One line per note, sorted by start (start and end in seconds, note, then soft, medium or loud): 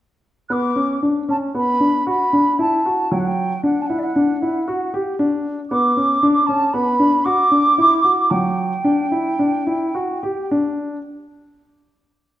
0.49 0.70 B3 medium
0.49 0.98 D6 medium
0.49 0.53 F#6 medium
0.76 0.96 C#4 medium
1.03 1.22 D4 medium
1.29 1.48 C#4 medium
1.29 1.36 A5 medium
1.55 1.74 B3 medium
1.55 2.04 B5 medium
1.80 2.00 D4 medium
2.07 2.27 F#4 medium
2.07 2.57 B5 medium
2.33 2.53 D4 medium
2.59 2.79 E4 medium
2.59 3.14 A5 medium
2.86 3.05 F#4 medium
3.12 3.51 F#3 medium
3.12 3.20 G5 medium
3.19 3.28 F#5 medium
3.26 3.64 G5 medium
3.63 3.83 D4 medium
3.63 3.82 F#5 medium
3.81 3.87 A5 medium
3.86 4.09 E4 medium
3.86 3.99 F#5 medium
3.98 4.04 D5 medium
4.03 5.16 F#5 medium
4.16 4.35 D4 medium
4.42 4.62 E4 medium
4.68 4.87 F#4 medium
4.94 5.13 G4 medium
5.19 5.58 D4 medium
5.70 5.91 B3 medium
5.70 6.48 D6 medium
5.97 6.16 C#4 medium
6.23 6.42 D4 medium
6.46 6.68 C#4 medium
6.46 6.74 A5 medium
6.73 6.94 B3 medium
6.73 7.26 B5 medium
6.99 7.19 D4 medium
7.24 7.46 F#4 medium
7.24 8.32 D6 medium
7.51 7.71 D4 medium
7.78 7.98 E4 medium
8.04 8.24 F#4 medium
8.30 8.72 F#3 medium
8.30 10.52 G5 medium
8.84 9.05 D4 medium
9.12 9.32 E4 medium
9.39 9.60 D4 medium
9.67 9.88 E4 medium
9.95 10.16 F#4 medium
10.23 10.45 G4 medium
10.51 10.96 D4 medium